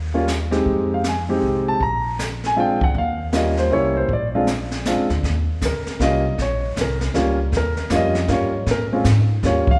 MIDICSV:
0, 0, Header, 1, 5, 480
1, 0, Start_track
1, 0, Tempo, 381437
1, 829, Time_signature, 3, 2, 24, 8
1, 12325, End_track
2, 0, Start_track
2, 0, Title_t, "Grand piano"
2, 0, Program_c, 0, 0
2, 175, Note_on_c, 0, 55, 56
2, 178, Note_on_c, 0, 58, 54
2, 180, Note_on_c, 0, 61, 56
2, 185, Note_on_c, 0, 65, 66
2, 331, Note_off_c, 0, 55, 0
2, 333, Note_off_c, 0, 58, 0
2, 334, Note_off_c, 0, 61, 0
2, 336, Note_off_c, 0, 65, 0
2, 642, Note_on_c, 0, 60, 55
2, 644, Note_on_c, 0, 56, 57
2, 645, Note_on_c, 0, 63, 50
2, 648, Note_on_c, 0, 67, 68
2, 1183, Note_on_c, 0, 77, 62
2, 1267, Note_off_c, 0, 60, 0
2, 1268, Note_off_c, 0, 56, 0
2, 1269, Note_off_c, 0, 63, 0
2, 1270, Note_off_c, 0, 67, 0
2, 1328, Note_off_c, 0, 77, 0
2, 1358, Note_on_c, 0, 80, 61
2, 1527, Note_off_c, 0, 80, 0
2, 1620, Note_on_c, 0, 56, 61
2, 1629, Note_on_c, 0, 60, 57
2, 1633, Note_on_c, 0, 67, 73
2, 1634, Note_on_c, 0, 63, 57
2, 2119, Note_on_c, 0, 81, 84
2, 2236, Note_off_c, 0, 56, 0
2, 2240, Note_off_c, 0, 60, 0
2, 2242, Note_off_c, 0, 67, 0
2, 2243, Note_off_c, 0, 63, 0
2, 2275, Note_off_c, 0, 81, 0
2, 2298, Note_on_c, 0, 82, 85
2, 3020, Note_off_c, 0, 82, 0
2, 3101, Note_on_c, 0, 80, 91
2, 3224, Note_on_c, 0, 56, 57
2, 3230, Note_on_c, 0, 60, 52
2, 3233, Note_on_c, 0, 65, 69
2, 3234, Note_on_c, 0, 62, 53
2, 3246, Note_off_c, 0, 80, 0
2, 3271, Note_on_c, 0, 79, 80
2, 3502, Note_off_c, 0, 56, 0
2, 3506, Note_off_c, 0, 60, 0
2, 3507, Note_off_c, 0, 65, 0
2, 3508, Note_off_c, 0, 62, 0
2, 3548, Note_off_c, 0, 79, 0
2, 3569, Note_on_c, 0, 78, 79
2, 3720, Note_off_c, 0, 78, 0
2, 3754, Note_on_c, 0, 77, 75
2, 4179, Note_off_c, 0, 77, 0
2, 4185, Note_on_c, 0, 55, 55
2, 4189, Note_on_c, 0, 58, 57
2, 4191, Note_on_c, 0, 61, 52
2, 4198, Note_on_c, 0, 65, 60
2, 4219, Note_on_c, 0, 75, 67
2, 4502, Note_off_c, 0, 75, 0
2, 4510, Note_on_c, 0, 72, 76
2, 4649, Note_off_c, 0, 55, 0
2, 4651, Note_off_c, 0, 58, 0
2, 4652, Note_off_c, 0, 61, 0
2, 4656, Note_off_c, 0, 65, 0
2, 4669, Note_on_c, 0, 55, 61
2, 4670, Note_off_c, 0, 72, 0
2, 4678, Note_on_c, 0, 58, 54
2, 4680, Note_on_c, 0, 64, 60
2, 4683, Note_on_c, 0, 61, 55
2, 4697, Note_on_c, 0, 73, 78
2, 4981, Note_off_c, 0, 73, 0
2, 4994, Note_on_c, 0, 72, 76
2, 5149, Note_off_c, 0, 55, 0
2, 5153, Note_off_c, 0, 58, 0
2, 5153, Note_off_c, 0, 72, 0
2, 5154, Note_off_c, 0, 64, 0
2, 5156, Note_off_c, 0, 61, 0
2, 5199, Note_on_c, 0, 74, 72
2, 5368, Note_off_c, 0, 74, 0
2, 5471, Note_on_c, 0, 60, 57
2, 5472, Note_on_c, 0, 56, 65
2, 5473, Note_on_c, 0, 62, 57
2, 5476, Note_on_c, 0, 65, 73
2, 5619, Note_off_c, 0, 56, 0
2, 5619, Note_off_c, 0, 60, 0
2, 5620, Note_off_c, 0, 62, 0
2, 5621, Note_off_c, 0, 65, 0
2, 6119, Note_on_c, 0, 60, 58
2, 6121, Note_on_c, 0, 56, 59
2, 6133, Note_on_c, 0, 62, 52
2, 6133, Note_on_c, 0, 65, 68
2, 6390, Note_off_c, 0, 60, 0
2, 6391, Note_off_c, 0, 56, 0
2, 6397, Note_off_c, 0, 62, 0
2, 6397, Note_off_c, 0, 65, 0
2, 7117, Note_on_c, 0, 70, 58
2, 7541, Note_off_c, 0, 70, 0
2, 7554, Note_on_c, 0, 55, 56
2, 7558, Note_on_c, 0, 58, 55
2, 7565, Note_on_c, 0, 61, 55
2, 7571, Note_on_c, 0, 65, 67
2, 7592, Note_on_c, 0, 75, 79
2, 7828, Note_off_c, 0, 55, 0
2, 7830, Note_off_c, 0, 58, 0
2, 7833, Note_off_c, 0, 61, 0
2, 7836, Note_off_c, 0, 65, 0
2, 8018, Note_off_c, 0, 75, 0
2, 8078, Note_on_c, 0, 73, 68
2, 8501, Note_off_c, 0, 73, 0
2, 8573, Note_on_c, 0, 70, 61
2, 8840, Note_off_c, 0, 70, 0
2, 8987, Note_on_c, 0, 55, 66
2, 8997, Note_on_c, 0, 61, 58
2, 8998, Note_on_c, 0, 58, 61
2, 9007, Note_on_c, 0, 65, 70
2, 9264, Note_off_c, 0, 55, 0
2, 9270, Note_off_c, 0, 58, 0
2, 9270, Note_off_c, 0, 61, 0
2, 9275, Note_off_c, 0, 65, 0
2, 9525, Note_on_c, 0, 70, 73
2, 9945, Note_off_c, 0, 70, 0
2, 9953, Note_on_c, 0, 55, 64
2, 9960, Note_on_c, 0, 58, 52
2, 9963, Note_on_c, 0, 61, 58
2, 9966, Note_on_c, 0, 65, 72
2, 10009, Note_on_c, 0, 75, 84
2, 10228, Note_off_c, 0, 55, 0
2, 10231, Note_off_c, 0, 58, 0
2, 10233, Note_off_c, 0, 61, 0
2, 10234, Note_off_c, 0, 65, 0
2, 10425, Note_on_c, 0, 55, 59
2, 10428, Note_off_c, 0, 75, 0
2, 10430, Note_on_c, 0, 61, 48
2, 10431, Note_on_c, 0, 58, 50
2, 10437, Note_on_c, 0, 65, 65
2, 10481, Note_on_c, 0, 73, 66
2, 10704, Note_off_c, 0, 55, 0
2, 10706, Note_off_c, 0, 61, 0
2, 10707, Note_off_c, 0, 58, 0
2, 10710, Note_off_c, 0, 65, 0
2, 10904, Note_off_c, 0, 73, 0
2, 10962, Note_on_c, 0, 70, 76
2, 11131, Note_off_c, 0, 70, 0
2, 11228, Note_on_c, 0, 56, 59
2, 11231, Note_on_c, 0, 60, 57
2, 11237, Note_on_c, 0, 61, 52
2, 11247, Note_on_c, 0, 65, 66
2, 11378, Note_off_c, 0, 56, 0
2, 11380, Note_off_c, 0, 60, 0
2, 11382, Note_off_c, 0, 61, 0
2, 11387, Note_off_c, 0, 65, 0
2, 11877, Note_on_c, 0, 55, 57
2, 11884, Note_on_c, 0, 58, 50
2, 11890, Note_on_c, 0, 61, 50
2, 11895, Note_on_c, 0, 65, 63
2, 11911, Note_on_c, 0, 73, 64
2, 12150, Note_off_c, 0, 55, 0
2, 12153, Note_off_c, 0, 58, 0
2, 12157, Note_off_c, 0, 61, 0
2, 12159, Note_off_c, 0, 65, 0
2, 12189, Note_off_c, 0, 73, 0
2, 12220, Note_on_c, 0, 77, 90
2, 12325, Note_off_c, 0, 77, 0
2, 12325, End_track
3, 0, Start_track
3, 0, Title_t, "Upright bass"
3, 0, Program_c, 1, 32
3, 0, Note_on_c, 1, 39, 79
3, 775, Note_off_c, 1, 39, 0
3, 826, Note_on_c, 1, 41, 73
3, 1737, Note_off_c, 1, 41, 0
3, 1782, Note_on_c, 1, 36, 68
3, 2232, Note_off_c, 1, 36, 0
3, 2266, Note_on_c, 1, 34, 76
3, 3484, Note_off_c, 1, 34, 0
3, 3535, Note_on_c, 1, 40, 69
3, 3696, Note_off_c, 1, 40, 0
3, 3704, Note_on_c, 1, 39, 84
3, 4615, Note_off_c, 1, 39, 0
3, 4657, Note_on_c, 1, 36, 69
3, 5108, Note_off_c, 1, 36, 0
3, 5138, Note_on_c, 1, 34, 71
3, 6213, Note_off_c, 1, 34, 0
3, 6260, Note_on_c, 1, 41, 56
3, 6402, Note_off_c, 1, 41, 0
3, 6409, Note_on_c, 1, 38, 67
3, 6567, Note_off_c, 1, 38, 0
3, 6581, Note_on_c, 1, 39, 69
3, 7050, Note_off_c, 1, 39, 0
3, 7067, Note_on_c, 1, 37, 75
3, 7346, Note_off_c, 1, 37, 0
3, 7544, Note_on_c, 1, 36, 79
3, 8012, Note_off_c, 1, 36, 0
3, 8023, Note_on_c, 1, 34, 70
3, 8491, Note_off_c, 1, 34, 0
3, 8507, Note_on_c, 1, 36, 83
3, 8974, Note_off_c, 1, 36, 0
3, 8985, Note_on_c, 1, 37, 77
3, 9453, Note_off_c, 1, 37, 0
3, 9461, Note_on_c, 1, 39, 82
3, 9930, Note_off_c, 1, 39, 0
3, 9938, Note_on_c, 1, 41, 91
3, 10409, Note_off_c, 1, 41, 0
3, 10423, Note_on_c, 1, 43, 87
3, 10892, Note_off_c, 1, 43, 0
3, 10900, Note_on_c, 1, 46, 79
3, 11371, Note_off_c, 1, 46, 0
3, 11380, Note_on_c, 1, 44, 88
3, 11851, Note_off_c, 1, 44, 0
3, 11862, Note_on_c, 1, 39, 76
3, 12152, Note_off_c, 1, 39, 0
3, 12325, End_track
4, 0, Start_track
4, 0, Title_t, "Muted upright bass strokes"
4, 7354, Note_on_c, 9, 29, 38
4, 7479, Note_off_c, 9, 29, 0
4, 12170, Note_on_c, 9, 29, 39
4, 12296, Note_off_c, 9, 29, 0
4, 12325, End_track
5, 0, Start_track
5, 0, Title_t, "Drums"
5, 350, Note_on_c, 9, 38, 55
5, 353, Note_on_c, 9, 44, 58
5, 476, Note_off_c, 9, 38, 0
5, 479, Note_off_c, 9, 44, 0
5, 655, Note_on_c, 9, 38, 34
5, 781, Note_off_c, 9, 38, 0
5, 830, Note_on_c, 9, 36, 30
5, 834, Note_on_c, 9, 25, 39
5, 956, Note_off_c, 9, 36, 0
5, 1308, Note_on_c, 9, 38, 54
5, 1310, Note_on_c, 9, 44, 42
5, 1434, Note_off_c, 9, 38, 0
5, 1436, Note_off_c, 9, 44, 0
5, 2274, Note_on_c, 9, 36, 29
5, 2276, Note_off_c, 9, 25, 0
5, 2276, Note_on_c, 9, 25, 38
5, 2400, Note_off_c, 9, 36, 0
5, 2757, Note_on_c, 9, 38, 53
5, 2760, Note_on_c, 9, 44, 51
5, 2883, Note_off_c, 9, 38, 0
5, 2885, Note_off_c, 9, 44, 0
5, 3064, Note_on_c, 9, 38, 35
5, 3190, Note_off_c, 9, 38, 0
5, 3540, Note_on_c, 9, 36, 44
5, 3666, Note_off_c, 9, 36, 0
5, 3712, Note_on_c, 9, 36, 28
5, 3716, Note_off_c, 9, 25, 0
5, 3716, Note_on_c, 9, 25, 43
5, 3838, Note_off_c, 9, 36, 0
5, 4185, Note_on_c, 9, 38, 52
5, 4188, Note_on_c, 9, 44, 44
5, 4311, Note_off_c, 9, 38, 0
5, 4313, Note_off_c, 9, 44, 0
5, 4493, Note_on_c, 9, 38, 35
5, 4619, Note_off_c, 9, 38, 0
5, 5143, Note_off_c, 9, 25, 0
5, 5143, Note_on_c, 9, 25, 39
5, 5146, Note_on_c, 9, 36, 31
5, 5272, Note_off_c, 9, 36, 0
5, 5625, Note_on_c, 9, 38, 56
5, 5628, Note_on_c, 9, 44, 51
5, 5751, Note_off_c, 9, 38, 0
5, 5754, Note_off_c, 9, 44, 0
5, 5931, Note_on_c, 9, 38, 38
5, 6057, Note_off_c, 9, 38, 0
5, 6108, Note_on_c, 9, 38, 51
5, 6111, Note_on_c, 9, 44, 53
5, 6234, Note_off_c, 9, 38, 0
5, 6237, Note_off_c, 9, 44, 0
5, 6415, Note_on_c, 9, 38, 35
5, 6541, Note_off_c, 9, 38, 0
5, 6587, Note_on_c, 9, 36, 23
5, 6591, Note_off_c, 9, 25, 0
5, 6591, Note_on_c, 9, 25, 38
5, 6591, Note_on_c, 9, 38, 35
5, 6713, Note_off_c, 9, 36, 0
5, 6717, Note_off_c, 9, 38, 0
5, 7067, Note_on_c, 9, 36, 23
5, 7067, Note_on_c, 9, 38, 49
5, 7070, Note_on_c, 9, 44, 54
5, 7193, Note_off_c, 9, 36, 0
5, 7193, Note_off_c, 9, 38, 0
5, 7195, Note_off_c, 9, 44, 0
5, 7380, Note_on_c, 9, 38, 35
5, 7506, Note_off_c, 9, 38, 0
5, 7547, Note_on_c, 9, 36, 21
5, 7550, Note_on_c, 9, 38, 40
5, 7673, Note_off_c, 9, 36, 0
5, 7676, Note_off_c, 9, 38, 0
5, 8030, Note_on_c, 9, 36, 19
5, 8033, Note_off_c, 9, 25, 0
5, 8033, Note_on_c, 9, 25, 42
5, 8033, Note_on_c, 9, 38, 36
5, 8156, Note_off_c, 9, 36, 0
5, 8158, Note_off_c, 9, 38, 0
5, 8510, Note_on_c, 9, 36, 17
5, 8515, Note_on_c, 9, 38, 49
5, 8518, Note_on_c, 9, 44, 47
5, 8636, Note_off_c, 9, 36, 0
5, 8641, Note_off_c, 9, 38, 0
5, 8644, Note_off_c, 9, 44, 0
5, 8818, Note_on_c, 9, 38, 36
5, 8944, Note_off_c, 9, 38, 0
5, 8987, Note_on_c, 9, 38, 39
5, 8990, Note_on_c, 9, 36, 22
5, 9112, Note_off_c, 9, 38, 0
5, 9116, Note_off_c, 9, 36, 0
5, 9469, Note_off_c, 9, 25, 0
5, 9469, Note_on_c, 9, 25, 39
5, 9469, Note_on_c, 9, 36, 23
5, 9469, Note_on_c, 9, 38, 36
5, 9595, Note_off_c, 9, 36, 0
5, 9595, Note_off_c, 9, 38, 0
5, 9773, Note_on_c, 9, 38, 33
5, 9899, Note_off_c, 9, 38, 0
5, 9939, Note_on_c, 9, 38, 54
5, 9942, Note_on_c, 9, 44, 48
5, 9946, Note_on_c, 9, 36, 23
5, 10065, Note_off_c, 9, 38, 0
5, 10067, Note_off_c, 9, 44, 0
5, 10072, Note_off_c, 9, 36, 0
5, 10253, Note_on_c, 9, 38, 35
5, 10378, Note_off_c, 9, 38, 0
5, 10420, Note_on_c, 9, 38, 42
5, 10426, Note_on_c, 9, 36, 19
5, 10546, Note_off_c, 9, 38, 0
5, 10551, Note_off_c, 9, 36, 0
5, 10904, Note_off_c, 9, 25, 0
5, 10904, Note_on_c, 9, 25, 37
5, 10904, Note_on_c, 9, 38, 39
5, 10906, Note_on_c, 9, 36, 18
5, 11030, Note_off_c, 9, 38, 0
5, 11032, Note_off_c, 9, 36, 0
5, 11381, Note_on_c, 9, 38, 55
5, 11384, Note_on_c, 9, 44, 44
5, 11385, Note_on_c, 9, 36, 18
5, 11507, Note_off_c, 9, 38, 0
5, 11510, Note_off_c, 9, 44, 0
5, 11511, Note_off_c, 9, 36, 0
5, 11866, Note_on_c, 9, 38, 40
5, 11867, Note_on_c, 9, 36, 22
5, 11992, Note_off_c, 9, 36, 0
5, 11992, Note_off_c, 9, 38, 0
5, 12174, Note_on_c, 9, 36, 56
5, 12299, Note_off_c, 9, 36, 0
5, 12325, Note_off_c, 9, 25, 0
5, 12325, End_track
0, 0, End_of_file